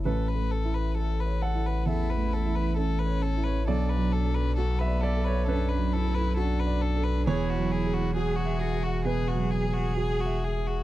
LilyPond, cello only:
\new Staff \with { instrumentName = "Cello" } { \time 4/4 \key a \major \tempo 4 = 67 r2 e'4 cis'4 | d'4 b4 d'8 e'8 d'4 | e'4 gis'8 fis'8 gis'2 | }